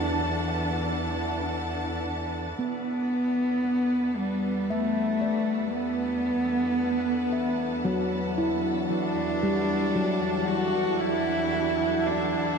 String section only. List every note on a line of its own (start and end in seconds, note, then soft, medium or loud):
0.00 2.58 E3 soft
0.00 2.59 D4 medium
0.00 2.58 A4 medium
0.00 2.58 F#5 medium
0.00 2.58 A5 medium
2.59 12.58 E3 medium
2.77 12.58 D4 medium
2.99 12.58 A5 medium
3.34 12.58 A4 medium
3.62 12.58 F#5 medium